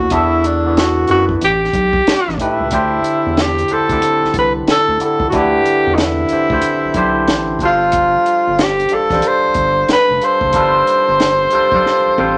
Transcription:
Already playing: tine electric piano B2 B3 C#4 E4 A4, tenor saxophone F#4
0.10 analog synth bass E2, tine electric piano E3 B3 D4 F#4 A4, tenor saxophone E4, kick, closed hi-hat
0.44 tenor saxophone D4, closed hi-hat
0.66 tine electric piano E3 B3 D4 F#4 B4
0.77 tenor saxophone F#4, snare, closed hi-hat
1.07 analog synth bass F#2, tine electric piano E3 B3 D4 F#4, tenor saxophone F#4, closed hi-hat
1.12 tine electric piano B4
1.29 kick
1.41 analog synth bass A1, tenor saxophone G4, closed hi-hat
1.64 snare
1.73 analog synth bass B1, kick, closed hi-hat
1.93 kick
2.07 analog synth bass A1, snare, closed hi-hat
2.28 analog synth bass A1, snare
2.38 tine electric piano A2 A3 D4 G4 B4, kick, closed hi-hat
2.43 tenor saxophone E4
2.60 analog synth bass C#2
2.71 analog synth bass D2, tine electric piano D3 D4 E4 G4 C5, kick, closed hi-hat
3.04 closed hi-hat
3.26 analog synth bass E2
3.37 tenor saxophone G4, snare, closed hi-hat
3.58 closed hi-hat
3.68 analog synth bass D2, tine electric piano D3 D4 E4 G4, closed hi-hat
3.73 tenor saxophone A4, tine electric piano C5
3.89 analog synth bass D2, tine electric piano D3 C4 D4 E4 G4, kick, closed hi-hat
4.02 closed hi-hat
4.24 analog synth bass C2, snare
4.34 analog synth bass C2, kick, closed hi-hat
4.39 tenor saxophone B4
4.67 analog synth bass D2, snare, closed hi-hat
4.72 tenor saxophone A4
4.88 analog synth bass D2
5.00 tine electric piano D3 D4 E4 G4 A4, closed hi-hat
5.05 tenor saxophone A4
5.20 analog synth bass C#2, kick
5.30 analog synth bass D2, tine electric piano D3 D4 E4, tenor saxophone F#4, kick, closed hi-hat
5.34 tine electric piano F#4 B4, tenor saxophone G4
5.41 tine electric piano G4
5.65 closed hi-hat
5.87 analog synth bass E2
5.95 tenor saxophone D#4, snare, closed hi-hat
6.01 tenor saxophone E4
6.29 analog synth bass D2, tine electric piano D3 D4 E4, closed hi-hat
6.33 tine electric piano G4 C5
6.50 analog synth bass D2, tine electric piano D3 D4 E4 G4 C5, kick
6.62 closed hi-hat
6.84 analog synth bass B1
6.94 analog synth bass B1, tine electric piano D3 D4 E4 G4, kick, closed hi-hat
6.98 tine electric piano C5
7.28 analog synth bass A1, snare, closed hi-hat
7.59 analog synth bass G1, tine electric piano G3 D4 F4 A4, kick, closed hi-hat
7.63 tenor saxophone F4, tine electric piano C5
7.92 kick, closed hi-hat
8.26 closed hi-hat
8.48 analog synth bass G1
8.59 snare, closed hi-hat
8.63 tenor saxophone G4
8.80 closed hi-hat
8.89 analog synth bass A1, tine electric piano G3 D4 F4, closed hi-hat
8.93 tine electric piano A4 D5, tenor saxophone A4
9.10 analog synth bass A1, tine electric piano G3 D4 F4 A4 C5, kick, snare, closed hi-hat
9.22 closed hi-hat
9.27 tenor saxophone C5
9.45 analog synth bass G1
9.54 analog synth bass G1, kick, closed hi-hat
9.89 analog synth bass F1, snare, closed hi-hat
9.93 tenor saxophone B4
10.10 analog synth bass F1
10.22 tine electric piano G3 D4 F4 A4 C5, tenor saxophone C5, closed hi-hat
10.41 analog synth bass F#1, kick
10.53 analog synth bass G1, tine electric piano G3 D4 F4 A4 B4, kick, closed hi-hat
10.63 tine electric piano C5
10.87 closed hi-hat
11.08 analog synth bass G1
11.20 snare, closed hi-hat
11.51 analog synth bass B1, tine electric piano G3 D4 F4 A4, closed hi-hat
11.55 tine electric piano C5
11.72 analog synth bass B1, tine electric piano G3 D4 F4 A4 D5, kick
11.86 snare
12.06 analog synth bass A1
12.18 analog synth bass A1, tine electric piano G3 D4 F4 A4 C5, high tom

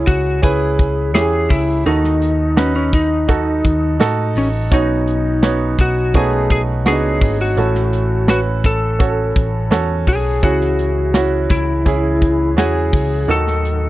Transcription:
Already playing: grand piano C#3 C#4 E4 G#4, lead electric guitar E4
0.07 picked electric bass C#2, lead electric guitar F#4, kick, closed hi-hat
0.42 picked electric bass C#2, grand piano C#4 E4 B4, lead electric guitar G#4, kick, closed hi-hat
0.79 kick, closed hi-hat
1.14 picked electric bass E2, grand piano C#4 E4 G4, lead electric guitar G#4, snare, closed hi-hat
1.21 grand piano G#4
1.50 picked electric bass C#2, lead electric guitar E4, kick, open hi-hat
1.86 picked electric bass D#2, grand piano D#3 D#4 F#4 A4, lead electric guitar D#4, closed hi-hat
2.04 snare
2.22 closed hi-hat
2.56 lead electric guitar C#4, grand piano D#4 F#4 B4, snare, closed hi-hat
2.76 lead electric guitar C#4
2.93 lead electric guitar D#4, kick, closed hi-hat
3.28 grand piano D#4 F#4 A4, kick, closed hi-hat
3.65 picked electric bass D#2, kick, closed hi-hat
4.00 picked electric bass A2, grand piano D#4 F#4 A4, snare, closed hi-hat
4.36 picked electric bass A1, lead electric guitar C#4, open hi-hat
4.71 picked electric bass B1, grand piano B2 B3 C#4 D#4 F#4 C#5, lead electric guitar D#4, kick, closed hi-hat
5.08 closed hi-hat
5.42 grand piano B3 C#4 D#4 F#4 C#5, snare, closed hi-hat
5.79 picked electric bass B1, lead electric guitar F#4, kick, closed hi-hat
6.14 picked electric bass B1, grand piano A3 B3 C#4 D#4 F#4, lead electric guitar G#4, kick, closed hi-hat
6.50 lead electric guitar G#4, kick, closed hi-hat
6.86 picked electric bass C#2, grand piano B3 C#4 D4 F#4 C#5, lead electric guitar G#4, snare, closed hi-hat
6.92 grand piano D#4
7.21 picked electric bass G#1, kick, open hi-hat
7.41 lead electric guitar F#4
7.57 picked electric bass A1, grand piano A2 C#4 F#4 A4, closed hi-hat
7.75 snare
7.93 closed hi-hat
8.28 grand piano C#4 F#4 B4, lead electric guitar F#4, snare, closed hi-hat
8.64 lead electric guitar A4, kick, closed hi-hat
8.99 grand piano C#4 F#4 A4, kick, closed hi-hat
9.36 picked electric bass A1, kick, closed hi-hat
9.71 picked electric bass E2, grand piano C#4 F#4 A4, snare, closed hi-hat
10.07 picked electric bass B1, lead electric guitar G#4, kick, open hi-hat
10.42 picked electric bass C#2, tonewheel organ C#3 E3 G#3 E4 G#4, grand piano C#3 C#4 E4 G#4, lead electric guitar F#4, kick, closed hi-hat
10.61 snare
10.79 closed hi-hat
11.14 grand piano C#4 E4 F#4, snare, closed hi-hat
11.50 picked electric bass C#2, lead electric guitar E4, kick, closed hi-hat
11.85 picked electric bass C#2, grand piano C#4 E4 G#4, kick, closed hi-hat
12.22 kick, closed hi-hat
12.57 picked electric bass E2, grand piano C#4 E4 F#4, lead electric guitar G#4, snare, closed hi-hat
12.93 picked electric bass C#2, kick, open hi-hat
13.28 picked electric bass D#2, tonewheel organ A2 D#3 F#3 D#4 F#4, grand piano D#3 D#4 F#4 A4, lead electric guitar A4, closed hi-hat
13.47 snare
13.65 closed hi-hat

